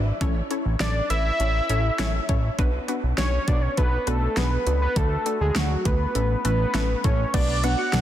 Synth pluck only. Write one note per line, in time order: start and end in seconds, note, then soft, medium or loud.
0.00 0.12 D4 medium
0.00 0.12 F#4 medium
0.00 0.12 B4 medium
0.00 0.12 D5 loud
0.21 0.41 C#4 loud
0.21 0.41 E4 loud
0.21 0.41 A4 loud
0.21 0.41 C#5 loud
0.51 0.71 C#4 medium
0.51 0.71 E4 medium
0.51 0.71 A4 medium
0.51 0.71 C#5 loud
0.81 1.01 C#4 medium
0.81 1.01 E4 medium
0.81 1.01 A4 medium
0.81 1.01 C#5 medium
1.10 1.31 C#4 medium
1.10 1.31 E4 medium
1.10 1.31 A4 medium
1.10 1.31 B4 medium
1.40 1.60 C#4 medium
1.40 1.60 E4 medium
1.40 1.60 A4 medium
1.40 1.60 C#5 medium
1.70 1.90 C#4 medium
1.70 1.90 E4 medium
1.70 1.90 A4 medium
1.70 1.90 C#5 loud
1.99 2.20 C#4 loud
1.99 2.20 E4 loud
1.99 2.20 A4 loud
1.99 2.20 C#5 loud
2.29 2.49 C#4 medium
2.29 2.49 E4 medium
2.29 2.49 A4 medium
2.29 2.49 C#5 medium
2.58 2.79 B3 loud
2.58 2.79 D4 loud
2.58 2.79 F#4 loud
2.58 2.79 B4 loud
2.88 3.09 B3 medium
2.88 3.09 D4 medium
2.88 3.09 F#4 medium
2.88 3.09 B4 loud
3.18 3.39 B3 medium
3.18 3.39 D4 medium
3.18 3.39 F#4 medium
3.18 3.39 B4 medium
3.48 3.68 B3 medium
3.48 3.68 D4 medium
3.48 3.68 F#4 medium
3.48 3.68 B4 medium
3.77 3.98 B3 medium
3.77 3.98 D4 medium
3.77 3.98 F#4 medium
3.77 3.98 A4 medium
4.07 4.28 B3 medium
4.07 4.28 D4 medium
4.07 4.28 F#4 medium
4.07 4.28 B4 loud
4.37 4.57 B3 medium
4.37 4.57 D4 medium
4.37 4.57 F#4 medium
4.37 4.57 G#4 loud
4.67 4.87 B3 medium
4.67 4.87 D4 medium
4.67 4.87 F#4 medium
4.67 4.87 B4 medium
4.96 5.17 A3 medium
4.96 5.17 D4 medium
4.96 5.17 F#4 medium
4.96 5.17 A4 loud
5.26 5.47 A3 medium
5.26 5.46 D4 medium
5.26 5.47 F#4 medium
5.26 5.46 A4 medium
5.56 5.76 A3 medium
5.56 5.76 D4 medium
5.56 5.76 F#4 medium
5.56 5.76 A4 medium
5.85 6.06 A3 medium
5.85 6.06 D4 medium
5.85 6.06 F#4 medium
5.85 6.06 B4 medium
6.15 6.36 A3 medium
6.15 6.36 C#4 medium
6.15 6.36 E4 medium
6.15 6.36 A4 medium
6.45 6.65 A3 loud
6.45 6.65 C#4 medium
6.45 6.65 E4 medium
6.45 6.65 A4 loud
6.74 6.95 A3 loud
6.74 6.95 C#4 loud
6.74 6.95 E4 loud
6.74 6.95 A4 loud
7.04 7.25 A3 medium
7.04 7.25 C#4 medium
7.04 7.25 E4 medium
7.04 7.25 A4 loud
7.34 7.54 B3 loud
7.34 7.54 D4 medium
7.34 7.54 F#4 medium
7.34 7.54 B4 loud
7.64 7.84 B3 medium
7.64 7.84 D4 medium
7.64 7.84 F#4 medium
7.64 7.84 B4 medium
7.93 8.01 B3 medium
7.93 8.01 D4 medium
7.93 8.01 F#4 medium
7.93 8.01 D5 medium